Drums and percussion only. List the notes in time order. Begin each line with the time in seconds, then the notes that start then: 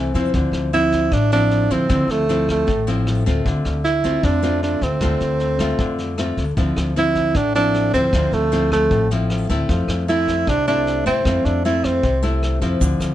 0.15 kick, snare
0.33 kick, snare
0.53 cross-stick, snare
0.73 snare
0.92 kick, snare
1.12 kick, cross-stick, snare
1.31 snare
1.51 snare
1.70 kick, snare
1.89 kick, cross-stick, snare
2.09 snare
2.29 snare
2.48 kick, cross-stick, snare
2.68 kick, snare
2.88 snare
3.07 cross-stick, snare
3.26 kick, snare
3.46 kick, snare
3.65 cross-stick, snare
3.84 snare
4.04 kick, snare
4.23 kick, cross-stick, snare
4.43 snare
4.63 snare
4.82 kick, snare
5.01 kick, cross-stick, snare
5.20 snare
5.40 snare
5.59 kick, cross-stick, snare
5.79 kick, snare
5.98 snare
6.18 cross-stick, snare
6.37 kick, snare
6.57 kick, snare
6.76 cross-stick, snare
6.96 snare
7.15 kick, snare
7.34 kick, cross-stick, snare
7.55 snare
7.74 snare
7.93 kick, snare
8.13 kick, cross-stick, snare
8.32 snare
8.52 snare
8.72 kick, cross-stick, snare
8.91 kick, snare
9.10 snare
9.30 cross-stick, snare
9.50 kick, snare
9.69 kick, snare
9.88 cross-stick, snare
10.08 snare
10.28 kick, snare
10.47 kick, cross-stick, snare
10.68 snare
10.87 snare
11.06 kick, snare
11.25 kick, cross-stick, snare
11.45 snare
11.65 snare
11.84 kick, cross-stick, snare
12.03 kick, snare
12.23 snare
12.43 cross-stick, snare
12.62 kick, snare
12.81 kick, snare, shaker
13.00 cross-stick, snare, shaker